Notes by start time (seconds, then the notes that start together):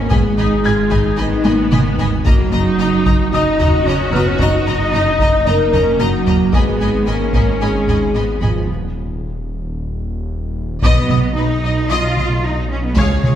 Already playing: G#1 A#3 C#4 F#5 F#6
0.00 A#4
0.10 G#1 G#3 B3 G#4 D#5 G#5 B5, taiko
0.38 G#1 D#4 D#5 G#5 B5
0.64 G#1 F4 D#5 G#5 B5 G#6
0.90 G#1 D#4 D#5 G#5 B5, taiko
1.17 G#1 D#3 B3 D#4 D#5 G#5 B5
1.43 G#1 D#5 G#5 B5, taiko high
1.71 G#1 D#3 D#4 D#5 G#5 B5, taiko mid
1.98 G#1 D#5 G#5 B5, taiko low
2.26 F#1 F#3 A#3 F#4 D#5 A#5, taiko
2.52 F#1 D#4 D#5 A#5
2.79 F#1 D#5 A#5
3.05 F#1 D#5 A#5, taiko
3.32 F#1 D#4 D#5 A#5 D#6
3.59 F#1 F#4 D#5 A#5, taiko low
3.86 F#1 C#4 C#5 D#5 A#5
4.12 F#1 B3 B4 D#5 A#5 F6, taiko low
4.26 C#4 C#5
4.39 F#1 D#4 D#5 A#5, taiko
4.66 F#1 D#5 A#5
4.93 F#1 D#4 D#5 A#5
5.20 F#1 D#5 A#5, taiko
5.47 F#1 A#3 D#4 A#4 D#5 A#5
5.73 F#1 C#4 D#5 A#5, taiko low
5.99 F#1 F#3 D#4 F#4 D#5 A#5
6.27 F#1 A#3 D#5 A#5, taiko low
6.53 G#1 G#3 B3 G#4 D#5 G#5 B5, taiko
6.80 G#1 D#5 G#5 B5
7.07 G#1 A#3 C#4 A#4 D#5 G#5 B5
7.34 G#1 D#5 G#5 B5, taiko
7.61 G#1 G#3 G#4 D#5 G#5 B5
7.88 G#1 D#5 G#5 B5, taiko low
8.14 G#1 B3 D#5 G#5 B5
8.41 G#1 F3 F4 D#5 G#5 B5, taiko low
8.69 D#1
10.83 B1 F#3 B3 D#5, taiko
11.09 B1 D#5 D#6, taiko mid
11.36 B1 D#4 B4 D#5
11.63 B1 D#5
11.90 B1 F4 D#5
12.17 B1 D#5, taiko mid
12.44 D#4
12.71 C#4
12.84 B3
12.96 C#2 G#3 F4 G#4 C#5 F5 G#5 G#6, taiko
13.24 C#2 G#4 C#5 F5, taiko mid